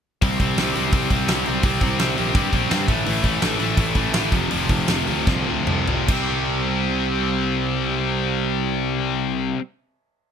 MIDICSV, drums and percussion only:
0, 0, Header, 1, 2, 480
1, 0, Start_track
1, 0, Key_signature, 0, "major"
1, 0, Tempo, 354820
1, 304, Time_signature, 4, 2, 24, 8
1, 4625, Tempo, 368777
1, 6545, Tempo, 400000
1, 7985, Tempo, 418118
1, 12833, End_track
2, 0, Start_track
2, 0, Title_t, "Drums"
2, 293, Note_on_c, 9, 46, 74
2, 300, Note_on_c, 9, 36, 106
2, 428, Note_off_c, 9, 46, 0
2, 435, Note_off_c, 9, 36, 0
2, 539, Note_on_c, 9, 36, 84
2, 541, Note_on_c, 9, 46, 56
2, 674, Note_off_c, 9, 36, 0
2, 676, Note_off_c, 9, 46, 0
2, 777, Note_on_c, 9, 46, 70
2, 785, Note_on_c, 9, 38, 102
2, 912, Note_off_c, 9, 46, 0
2, 921, Note_off_c, 9, 38, 0
2, 1019, Note_on_c, 9, 46, 51
2, 1154, Note_off_c, 9, 46, 0
2, 1252, Note_on_c, 9, 46, 78
2, 1254, Note_on_c, 9, 36, 109
2, 1387, Note_off_c, 9, 46, 0
2, 1390, Note_off_c, 9, 36, 0
2, 1495, Note_on_c, 9, 36, 82
2, 1497, Note_on_c, 9, 46, 56
2, 1630, Note_off_c, 9, 36, 0
2, 1632, Note_off_c, 9, 46, 0
2, 1733, Note_on_c, 9, 46, 75
2, 1742, Note_on_c, 9, 38, 109
2, 1869, Note_off_c, 9, 46, 0
2, 1877, Note_off_c, 9, 38, 0
2, 1970, Note_on_c, 9, 46, 48
2, 2105, Note_off_c, 9, 46, 0
2, 2203, Note_on_c, 9, 46, 74
2, 2212, Note_on_c, 9, 36, 111
2, 2339, Note_off_c, 9, 46, 0
2, 2347, Note_off_c, 9, 36, 0
2, 2445, Note_on_c, 9, 46, 52
2, 2452, Note_on_c, 9, 36, 89
2, 2581, Note_off_c, 9, 46, 0
2, 2587, Note_off_c, 9, 36, 0
2, 2694, Note_on_c, 9, 46, 70
2, 2702, Note_on_c, 9, 38, 107
2, 2829, Note_off_c, 9, 46, 0
2, 2837, Note_off_c, 9, 38, 0
2, 2941, Note_on_c, 9, 46, 49
2, 3077, Note_off_c, 9, 46, 0
2, 3176, Note_on_c, 9, 46, 73
2, 3178, Note_on_c, 9, 36, 114
2, 3312, Note_off_c, 9, 46, 0
2, 3313, Note_off_c, 9, 36, 0
2, 3419, Note_on_c, 9, 46, 51
2, 3420, Note_on_c, 9, 36, 76
2, 3555, Note_off_c, 9, 36, 0
2, 3555, Note_off_c, 9, 46, 0
2, 3662, Note_on_c, 9, 46, 73
2, 3670, Note_on_c, 9, 38, 105
2, 3797, Note_off_c, 9, 46, 0
2, 3806, Note_off_c, 9, 38, 0
2, 3901, Note_on_c, 9, 36, 92
2, 3906, Note_on_c, 9, 46, 53
2, 4036, Note_off_c, 9, 36, 0
2, 4041, Note_off_c, 9, 46, 0
2, 4143, Note_on_c, 9, 46, 74
2, 4278, Note_off_c, 9, 46, 0
2, 4378, Note_on_c, 9, 46, 55
2, 4382, Note_on_c, 9, 36, 83
2, 4513, Note_off_c, 9, 46, 0
2, 4517, Note_off_c, 9, 36, 0
2, 4623, Note_on_c, 9, 46, 67
2, 4631, Note_on_c, 9, 38, 97
2, 4753, Note_off_c, 9, 46, 0
2, 4761, Note_off_c, 9, 38, 0
2, 4856, Note_on_c, 9, 46, 52
2, 4986, Note_off_c, 9, 46, 0
2, 5087, Note_on_c, 9, 36, 104
2, 5087, Note_on_c, 9, 46, 83
2, 5217, Note_off_c, 9, 36, 0
2, 5217, Note_off_c, 9, 46, 0
2, 5313, Note_on_c, 9, 46, 53
2, 5321, Note_on_c, 9, 36, 77
2, 5443, Note_off_c, 9, 46, 0
2, 5451, Note_off_c, 9, 36, 0
2, 5557, Note_on_c, 9, 46, 78
2, 5565, Note_on_c, 9, 38, 109
2, 5687, Note_off_c, 9, 46, 0
2, 5695, Note_off_c, 9, 38, 0
2, 5799, Note_on_c, 9, 36, 89
2, 5800, Note_on_c, 9, 46, 50
2, 5929, Note_off_c, 9, 36, 0
2, 5930, Note_off_c, 9, 46, 0
2, 6039, Note_on_c, 9, 46, 73
2, 6169, Note_off_c, 9, 46, 0
2, 6282, Note_on_c, 9, 46, 55
2, 6285, Note_on_c, 9, 36, 85
2, 6412, Note_off_c, 9, 46, 0
2, 6415, Note_off_c, 9, 36, 0
2, 6522, Note_on_c, 9, 46, 72
2, 6529, Note_on_c, 9, 38, 100
2, 6643, Note_off_c, 9, 46, 0
2, 6651, Note_off_c, 9, 38, 0
2, 6756, Note_on_c, 9, 46, 45
2, 6876, Note_off_c, 9, 46, 0
2, 6998, Note_on_c, 9, 36, 112
2, 7002, Note_on_c, 9, 38, 63
2, 7118, Note_off_c, 9, 36, 0
2, 7122, Note_off_c, 9, 38, 0
2, 7475, Note_on_c, 9, 45, 78
2, 7595, Note_off_c, 9, 45, 0
2, 7722, Note_on_c, 9, 43, 73
2, 7842, Note_off_c, 9, 43, 0
2, 7971, Note_on_c, 9, 49, 85
2, 7975, Note_on_c, 9, 36, 103
2, 8087, Note_off_c, 9, 49, 0
2, 8090, Note_off_c, 9, 36, 0
2, 12833, End_track
0, 0, End_of_file